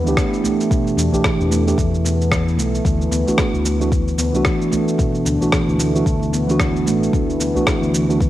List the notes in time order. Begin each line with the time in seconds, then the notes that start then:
Already playing: B3
0.04 D2 E3 A3 D4 G4, cabasa
0.17 E3, kick, cross-stick, cabasa
0.34 cabasa
0.44 A3, udu, cabasa
0.61 cabasa
0.71 B2, kick, cabasa
0.87 cabasa
0.97 E2 D4, cabasa
1.12 E3 A3 D4 G4, udu, cabasa
1.24 E3, kick, cross-stick, cabasa
1.40 E2, cabasa
1.51 A3, cabasa
1.66 E3 A3 D4 G4, cabasa
1.78 E2 E3, kick, cabasa
1.95 cabasa
2.05 B3, cabasa
2.21 cabasa
2.31 E3, kick, cross-stick, cabasa
2.48 cabasa
2.58 B1 A3, cabasa
2.75 cabasa
2.85 D2 E3, kick, cabasa
3.01 cabasa
3.11 D2 B3, cabasa
3.26 E3 A3 D4 F#4, udu, cabasa
3.38 E3, kick, cross-stick, cabasa
3.54 D2, cabasa
3.65 E3, cabasa
3.80 E3 A3 D4 F#4, cabasa
3.92 B3, kick, cabasa
4.08 cabasa
4.18 D2 B3, cabasa
4.33 C2 E3 A3 D4 F#4, cabasa
4.45 E3, kick, cross-stick, cabasa
4.62 cabasa
4.72 A3, udu, cabasa
4.88 cabasa
4.98 B2, kick, cabasa
5.15 cabasa
5.25 D2 D4, cabasa
5.41 E3 A3 D4 F#4, udu, cabasa
5.52 E3, kick, cross-stick, cabasa
5.68 D2, cabasa
5.79 A3, cabasa
5.94 E3 A3 D4 F#4, cabasa
6.06 D2 E3, kick, cabasa
6.23 cabasa
6.33 B3, cabasa
6.47 E3 A3 D4 F#4, cabasa
6.60 E3, kick, cross-stick, cabasa
6.76 cabasa
6.86 A1 A3, cabasa
7.03 cabasa
7.13 D2 E3, kick, cabasa
7.30 cabasa
7.39 D2 B3, cabasa
7.55 E3 A3 D4 F#4, udu, cabasa
7.67 E3, kick, cross-stick, cabasa
7.82 D2, cabasa
7.94 E3, cabasa
8.08 E3 A3 D4 F#4, cabasa
8.20 B3, kick, cabasa